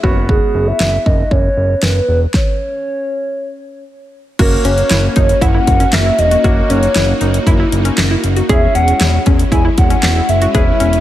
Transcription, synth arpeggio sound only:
4.39 F#4
4.65 C#4
4.90 E4
5.16 D#4
5.42 E4
5.55 E4
5.80 C#4
6.06 E4
6.31 F#4
6.44 F#4
6.70 C#4
6.96 E4
7.21 D#4
7.47 E4
7.60 E4
7.85 C#4
8.11 E4
8.37 F#4
8.49 G#4
8.75 C#4
9.01 E4
9.26 C#4
9.52 E4
9.65 E4
9.90 C#4
10.16 E4
10.42 F#4
10.55 G#4
10.80 C#4

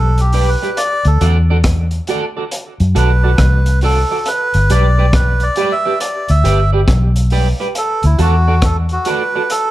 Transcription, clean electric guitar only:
0.34 G4 B4 D5
0.62 G4 B4 D5
1.21 F#4 A4 D5
1.50 F#4 A4 D5
2.08 F#4 A4 D5
2.37 F#4 A4 D5
2.95 F#4 A4 D5
3.23 F#4 A4 D5
3.83 F#4 A4 D5
4.11 F#4 A4 D5
4.70 G4 B4 D5
4.98 G4 B4 D5
5.57 G4 B4 D5
5.85 G4 B4 D5
6.44 G4 B4 D5
6.73 G4 B4 D5
7.32 G4 B4 D5
7.60 G4 B4 D5
8.19 F#4 A4 D5
8.48 F#4 A4 D5
9.06 F#4 A4 D5
9.35 F#4 A4 D5

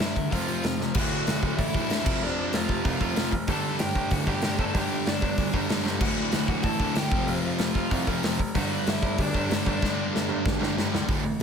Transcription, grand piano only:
0.00 G1
0.16 E1
0.32 F1
0.63 F1
0.79 F1
0.94 D1
1.27 D1
1.42 D1
1.58 A1
1.74 D1
1.88 D1
2.05 F1
2.21 F1
2.54 F1
2.69 F1
2.84 C2
3.01 F1
3.15 F1
3.32 F1
3.48 G1
3.79 G1
3.95 G1
4.11 D1
4.27 G1
4.43 G1
4.58 G1
4.74 G1
5.06 G1
5.22 G1
5.38 D1
5.53 G1
5.68 G1
5.84 G1
6.01 D1
6.32 D1
6.48 D1
6.64 A1
6.79 D1
6.95 D1
7.11 F1
7.26 F1
7.58 F1
7.75 F1
7.91 C2
8.06 F1
8.24 F1
8.40 F1
8.55 G1
8.87 G1
9.02 G1
9.18 D1
9.34 G1
9.50 G1
9.66 G1
9.82 G1
10.13 G1
10.28 G1
10.45 D1
10.60 G1
10.77 G1
10.93 C#2
11.08 D1
11.23 A1

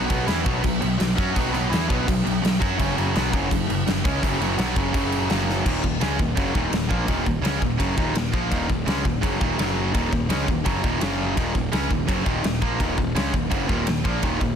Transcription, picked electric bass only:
0.11 B1
0.28 E2
0.46 B1
0.64 B1
0.83 B1
1.00 B1
1.18 F#2
1.36 B1
1.54 B1
1.72 E2
1.91 B1
2.08 B1
2.27 B1
2.43 B1
2.61 F#2
2.79 F#1
2.98 F#1
3.16 B1
3.33 F#1
3.52 F#1
3.70 F#1
3.87 F#1
4.05 C#2
4.24 F#1
4.39 F#1
4.58 B1
4.76 F#1
4.94 F#1
5.30 F#1
5.66 D#1
5.83 D#1
6.01 C#2
6.19 D#1
6.37 F#1
6.55 D#1
6.71 D#1
6.91 A#1
7.09 D#1
7.27 D#1
7.41 C#2
7.62 D#1
7.79 F#1
7.98 D#1
8.14 D#1
8.33 A#1
8.52 D#1
8.70 D#1
8.86 C#2
9.06 D#1
9.23 F#1
9.41 D#1
9.58 F#1
9.95 D#1
10.12 D#1
10.29 C#2
10.48 D#1
10.66 F#1
10.84 D#1
11.02 F#1
11.37 D#1
11.55 D#1
11.72 C#2
11.91 D#1
12.09 F#1
12.26 D#1
12.45 D#1
12.62 A#1
12.80 D#1
12.98 D#1
13.14 C#2
13.34 D#1
13.52 F#1
13.69 D#1
13.88 D#1
14.05 A#1
14.23 D#1

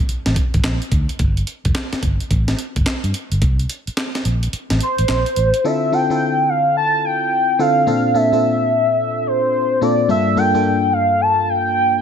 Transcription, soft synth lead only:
4.82 C5
5.66 E5
5.94 G5
6.49 F5
6.77 A5
7.05 G5
7.60 F5
8.16 E5
9.27 C5
9.82 D5
10.10 E5
10.38 G5
10.93 F5
11.21 A5
11.49 G5

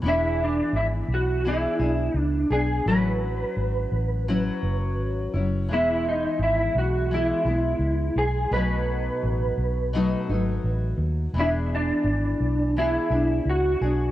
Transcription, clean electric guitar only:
0.08 E4
0.43 D4
0.76 E4
1.14 F#4
1.48 E4
2.18 D4
2.52 G#4
2.88 B4
5.73 E4
6.08 D#4
6.43 E4
6.78 F#4
7.14 E4
8.18 G#4
8.53 B4
11.40 E4
11.75 D4
12.78 E4
13.50 F#4

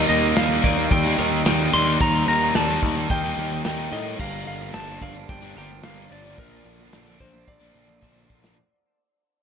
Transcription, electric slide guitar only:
0.09 D#5
0.37 F5
0.92 G5
1.47 G5
1.73 C6
2.01 A#5
2.28 A#5
2.56 A5
3.11 G5
3.66 G5
3.92 D#5
4.21 F5
4.47 F5
4.74 A5
5.02 F5
5.29 G5
5.58 G5
5.85 F5
6.12 D5
6.39 A#4
7.21 C5
7.48 D5

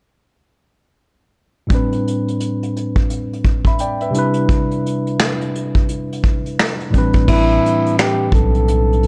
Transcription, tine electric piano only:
1.67 A2 G3 C4
1.73 D4 B4
3.67 E5 B5
3.80 D5 G5
4.02 B4 E5
4.11 C3 G3
4.15 D4 E4 B4
6.90 A2 E3 G3
6.95 C4 D4 B4
7.25 A2 E3 G3
7.30 C4 D4 B4

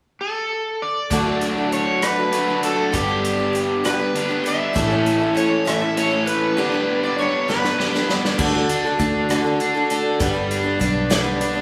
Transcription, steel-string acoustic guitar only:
1.10 D3 A3 D4 F#4 A4
1.26 D4 F#4 A4
1.57 D4 F#4 A4
1.72 A3 D4 F#4 A4
2.03 D3 A3 D4 F#4 A4
2.16 D4 F#4 A4
2.48 D4 F#4 A4
2.63 A3 D4 F#4 A4
2.92 G2 D3 G3 B3 D4 G4
3.08 G3 B3 D4 G4
3.38 G3 B3 D4 G4
3.53 G3 B3 D4 G4
3.84 G2 D3 G3 B3 D4 G4
3.99 G3 B3 D4 G4
4.29 G3 B3 D4 G4
4.44 G3 B3 D4 G4
4.73 A2 E3 A3 C#4 E4 A4
4.90 A3 C#4 E4 A4
5.20 A3 C#4 E4 A4
5.35 A3 C#4 E4 A4
5.65 A2 E3 A3 C#4 E4 A4
5.80 A3 C#4 E4 A4
6.10 A3 C#4 E4 A4
6.26 A3 C#4 E4 A4
6.57 G2 D3 G3 B3 D4 B4
6.72 G3 B3 D4 B4
7.03 G3 B3 D4 B4
7.18 G3 B3 D4 B4
7.48 G2 D3 G3 B3 D4 B4
7.63 G3 B3 D4 B4
7.93 G3 B3 D4 B4
8.09 G3 B3 D4 B4
8.38 D3 A3 D4 F#4 A4
8.54 D4 F#4 A4
8.84 D4 F#4 A4
8.99 A3 D4 F#4 A4
9.29 D3 A3 D4 F#4 A4
9.44 D4 F#4 A4
9.75 D4 F#4 A4
9.90 A3 D4 F#4 A4
10.20 G2 D3 G3 B3 D4 B4
10.33 G3 B3 D4 B4
10.63 G3 B3 D4 B4
10.79 G3 B3 D4 B4
11.10 G2 D3 G3 B3 D4 B4
11.24 G3 B3 D4 B4
11.53 G3 B3 D4 B4

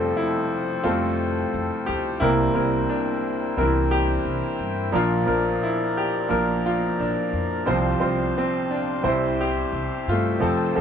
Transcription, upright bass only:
Already playing: F2
0.84 F2
1.54 F2
1.88 D2
2.21 C2
2.55 C2
3.57 C2
4.25 C2
4.59 G2
4.92 A#1
5.27 A#1
6.30 A#1
6.99 A#1
7.33 F2
7.67 C2
8.02 C2
9.04 C2
9.72 C2
10.07 G2
10.42 F2
10.77 F2

